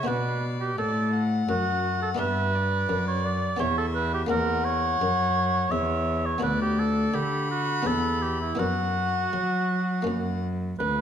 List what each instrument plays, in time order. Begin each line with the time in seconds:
0.03 harpsichord B3 D4 F#4, oboe B4
0.08 harpsichord B2, cello B2, violin D5
0.60 oboe G4
0.78 harpsichord A2, cello A2, oboe A4, violin D5
1.14 violin F#5
1.49 harpsichord F#2, cello F#2, oboe F#4
2.02 oboe A4
2.15 harpsichord B3 D4 G4
2.19 harpsichord G2, cello G2, oboe B4, violin E5
2.54 violin D5
2.89 harpsichord F#2, cello F#2
3.08 oboe C#5
3.25 oboe D5
3.56 harpsichord B3 C#4 G4, oboe C#5, violin E5
3.61 cello E2, harpsichord E2
3.78 oboe A4
3.95 oboe B4
4.14 oboe G4
4.26 harpsichord A#3 C#4 F#4, oboe A#4, violin F#5
4.31 cello E2, harpsichord E2
4.65 oboe C#5
5.01 cello F#2, harpsichord F#2
5.71 harpsichord E2, cello E2, violin C#5, oboe E5
6.26 oboe C#5
6.38 harpsichord B3 D4 F#4
6.43 harpsichord D2, cello D2, oboe B4, violin D5
6.62 oboe G4
6.79 oboe A4
7.14 harpsichord D3, cello D3, oboe G4, violin B5
7.51 oboe F#4
7.82 harpsichord B3 C#4 E4
7.87 harpsichord E2, cello E2, oboe A4
8.22 oboe G4
8.41 oboe E4
8.55 harpsichord B3 D4, oboe F#4, violin F#5
8.59 cello F#2, harpsichord F#2
9.33 harpsichord F#3, cello F#3
10.02 harpsichord A#3 C#4
10.07 cello F#2, harpsichord F#2
10.79 cello D2, harpsichord D2, oboe B4